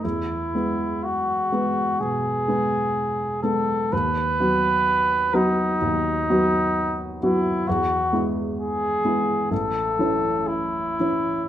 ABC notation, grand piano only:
X:1
M:4/4
L:1/8
Q:1/4=63
K:E
V:1 name="Grand piano"
E,, [G,B,B]2 [G,B,B] B,, [G,B,B]2 [G,B,B] | D,, [F,B,F]2 [F,B,F] D,, [F,B,F]2 [F,B,F] | E,, [G,B,E]2 [G,B,E] A,,, [E,CE]2 [E,CE] |]